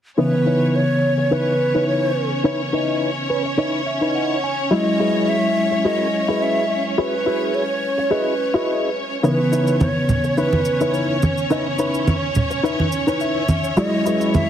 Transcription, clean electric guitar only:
0.18 0.33 D#4 medium
0.18 0.34 E4 medium
0.18 0.34 B4 medium
0.18 0.34 C#5 loud
0.46 0.82 D#4 medium
0.46 0.82 E4 medium
0.46 0.83 B4 medium
0.46 0.83 C#5 medium
1.18 muted clean electric guitar stroke soft
1.31 1.53 D#4 medium
1.31 1.53 E4 medium
1.31 1.54 B4 medium
1.31 1.54 C#5 medium
1.75 2.10 D#4 medium
1.75 2.10 E4 medium
1.75 2.10 B4 medium
1.75 2.10 C#5 medium
2.44 2.60 D#4 loud
2.44 2.60 E4 medium
2.44 2.60 B4 medium
2.44 2.60 C#5 loud
2.73 3.09 D#4 medium
2.73 3.09 E4 medium
2.73 3.09 B4 medium
2.73 3.10 D#5 medium
3.30 3.43 B4 medium
3.44 muted clean electric guitar stroke soft
3.58 3.80 D#4 medium
3.58 3.80 E4 medium
3.58 3.80 B4 medium
3.58 3.80 C#5 medium
3.58 3.84 D#5 medium
3.86 4.13 E5 medium
4.01 4.36 D#4 medium
4.01 4.37 E4 medium
4.01 4.37 B4 medium
4.01 4.37 D#5 medium
4.15 4.41 F#5 medium
4.44 4.70 G#5 medium
4.71 4.86 E4 loud
4.71 4.86 F#4 medium
4.71 4.87 G#4 medium
4.71 4.87 D#5 loud
4.99 5.35 E4 medium
4.99 5.36 F#4 medium
4.99 5.36 G#4 medium
4.99 5.36 B4 medium
5.71 muted clean electric guitar stroke soft
5.85 6.06 E4 medium
5.85 6.06 F#4 medium
5.85 6.07 G#4 medium
5.85 6.07 A#4 medium
6.28 6.63 E4 medium
6.28 6.63 F#4 medium
6.28 6.63 G#4 medium
6.28 6.64 B4 medium
6.98 7.13 E4 medium
6.98 7.13 F#4 loud
6.98 7.13 G#4 medium
6.98 7.14 C#5 medium
7.26 7.62 E4 medium
7.26 7.62 F#4 medium
7.26 7.62 G#4 medium
7.26 7.62 B4 medium
7.98 muted clean electric guitar stroke soft
8.11 8.33 E4 medium
8.11 8.33 F#4 medium
8.11 8.33 G#4 medium
8.11 8.33 D#5 medium
8.54 8.89 E4 medium
8.54 8.89 F#4 medium
8.54 8.89 G#4 medium
8.54 8.90 D#5 medium
9.23 9.39 D#4 loud
9.23 9.39 E4 medium
9.23 9.39 B4 medium
9.23 9.40 C#5 medium
9.52 9.88 D#4 medium
9.52 9.88 E4 medium
9.52 9.89 B4 medium
9.52 9.89 C#5 medium
10.24 muted clean electric guitar stroke soft
10.37 10.59 D#4 medium
10.37 10.59 E4 medium
10.37 10.60 B4 medium
10.37 10.60 C#5 medium
10.81 11.16 D#4 medium
10.81 11.16 E4 medium
10.81 11.16 B4 medium
10.81 11.16 C#5 medium
11.50 11.66 D#4 loud
11.50 11.66 E4 medium
11.50 11.66 B4 medium
11.50 11.66 D#5 loud
11.78 12.15 D#4 medium
11.78 12.15 E4 medium
11.78 12.15 B4 medium
11.78 12.15 C#5 medium
12.50 muted clean electric guitar stroke soft
12.63 12.85 D#4 medium
12.63 12.86 E4 medium
12.63 12.86 B4 medium
12.63 12.86 E5 medium
13.07 13.42 D#4 medium
13.07 13.42 E4 medium
13.07 13.43 B4 medium
13.07 13.43 C#5 medium
13.21 13.73 E5 medium
13.77 13.92 E4 loud
13.77 13.93 F#4 loud
13.77 13.93 G#4 loud
13.77 13.93 D#5 loud
14.05 14.41 E4 medium
14.05 14.42 F#4 medium
14.05 14.42 G#4 medium
14.05 14.42 B4 medium

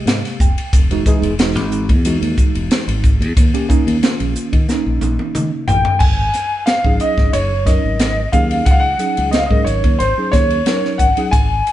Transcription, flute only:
5.70 6.00 G5 medium
6.02 6.64 G#5 medium
6.69 6.99 F5 medium
7.02 7.32 D#5 medium
7.35 7.65 C#5 medium
7.67 8.29 D#5 medium
8.34 8.64 F5 medium
8.67 8.74 F#5 medium
8.75 8.81 F5 medium
8.83 9.30 F#5 medium
9.34 9.39 D#5 medium
9.40 9.47 F5 medium
9.49 9.65 D#5 medium
9.66 9.97 C#5 medium
9.99 10.30 C5 medium
10.32 10.95 C#5 medium
10.99 11.30 F#5 medium
11.31 11.72 G#5 medium

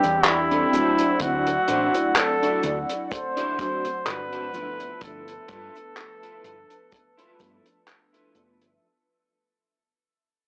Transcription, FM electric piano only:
0.00 0.67 G3 medium
0.00 0.68 C4 medium
0.00 0.68 D4 medium
0.00 0.68 G4 loud
0.72 1.15 F#3 medium
0.72 1.15 A3 medium
0.72 1.15 C4 medium
0.72 1.16 D4 medium
0.72 1.16 E4 loud
1.19 3.53 F#3 medium
1.19 3.53 A3 medium
1.19 3.54 C4 medium
1.19 3.54 D4 medium
1.19 3.54 E4 medium
3.58 4.48 F#3 loud
3.58 4.49 A3 medium
3.58 4.49 C4 medium
3.58 4.49 D4 medium
3.58 4.49 F#4 loud
4.53 4.96 F3 medium
4.53 4.96 A3 medium
4.53 4.97 B3 medium
4.53 4.97 D4 medium
4.53 4.97 E5 loud
5.00 7.34 F3 medium
5.00 7.34 A3 medium
5.00 7.35 B3 medium
5.00 7.35 D4 medium
5.00 7.36 E5 medium
7.39 8.29 F3 medium
7.39 8.30 A3 medium
7.39 8.30 B3 medium
7.39 8.30 D4 medium
8.34 8.77 F3 medium
8.34 8.77 A3 medium
8.34 8.77 B3 medium
8.34 8.78 D4 medium
8.34 8.78 E5 loud

